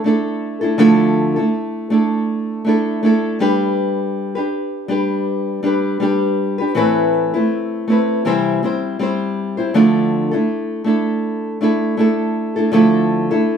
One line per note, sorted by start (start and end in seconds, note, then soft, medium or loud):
0.04 0.62 A3 medium
0.04 0.63 D4 medium
0.04 0.61 E4 medium
0.04 0.60 A4 medium
0.61 0.78 A3 soft
0.61 0.78 D4 soft
0.61 0.78 E4 medium
0.61 0.79 A4 medium
0.78 1.37 D3 medium
0.78 1.37 F3 medium
0.78 1.37 A3 medium
0.78 1.37 D4 medium
0.78 1.36 E4 medium
0.78 1.35 A4 medium
1.36 1.89 A3 soft
1.36 1.90 D4 soft
1.36 1.91 E4 medium
1.36 1.91 A4 medium
1.90 2.63 A3 medium
1.90 2.66 D4 medium
1.90 2.66 E4 medium
1.90 2.67 A4 medium
2.65 3.02 A3 medium
2.65 3.02 D4 medium
2.65 3.04 E4 medium
2.69 3.05 A4 medium
3.03 3.40 A3 medium
3.03 3.40 D4 medium
3.03 3.41 E4 medium
3.03 3.42 A4 medium
3.40 4.36 G3 medium
3.40 4.36 D4 medium
3.40 4.35 G4 medium
3.40 4.35 B4 medium
4.35 4.88 D4 soft
4.35 4.89 G4 medium
4.35 4.90 B4 medium
4.88 5.61 G3 medium
4.88 5.62 D4 medium
4.88 5.64 G4 medium
4.88 5.66 B4 medium
5.63 5.99 G3 medium
5.63 6.00 D4 medium
5.63 6.01 G4 medium
5.63 6.02 B4 medium
6.00 6.59 G3 medium
6.00 6.59 D4 medium
6.00 6.59 G4 medium
6.00 6.57 B4 medium
6.58 6.76 D4 soft
6.58 6.76 G4 medium
6.58 6.76 B4 medium
6.75 7.33 A2 medium
6.75 7.33 E3 medium
6.75 7.34 A3 medium
6.75 7.34 C4 medium
6.75 7.33 E4 medium
6.75 7.32 B4 medium
7.34 7.86 A3 soft
7.34 7.88 C4 soft
7.34 7.88 E4 medium
7.34 7.88 B4 medium
7.88 8.25 A3 medium
7.88 8.25 C4 medium
7.88 8.25 E4 medium
7.92 8.27 B4 medium
8.25 8.62 C3 medium
8.25 8.63 E3 medium
8.25 8.62 G3 medium
8.25 8.63 C4 medium
8.25 8.63 E4 medium
8.25 8.63 C5 medium
8.63 8.98 G3 medium
8.63 8.99 C4 medium
8.63 9.00 E4 medium
8.63 9.01 C5 medium
8.99 9.57 G3 medium
8.99 9.58 C4 medium
8.99 9.57 E4 medium
8.99 9.56 C5 medium
9.57 9.74 G3 soft
9.57 9.75 C4 soft
9.57 9.75 E4 medium
9.57 9.74 C5 medium
9.74 10.32 D3 medium
9.74 10.32 F3 medium
9.74 10.32 A3 medium
9.74 10.33 D4 medium
9.74 10.32 E4 medium
9.74 10.30 A4 medium
10.31 10.83 A3 soft
10.31 10.85 D4 medium
10.31 10.86 E4 medium
10.31 10.86 A4 medium
10.84 11.60 A3 medium
10.84 11.61 D4 medium
10.84 11.61 E4 medium
10.84 11.62 A4 medium
11.61 11.96 A3 medium
11.61 11.98 D4 medium
11.61 11.98 E4 medium
11.61 11.99 A4 medium
11.97 12.55 A3 medium
11.97 12.56 D4 medium
11.97 12.56 E4 medium
11.97 12.55 A4 medium
12.56 12.71 A3 medium
12.56 12.72 D4 soft
12.56 12.73 E4 medium
12.56 12.73 A4 medium
12.72 13.30 D3 medium
12.72 13.30 F3 medium
12.72 13.30 A3 medium
12.72 13.31 D4 medium
12.72 13.30 E4 medium
12.72 13.30 A4 medium
13.31 13.57 A3 soft
13.31 13.57 D4 medium
13.31 13.57 E4 medium
13.31 13.57 A4 medium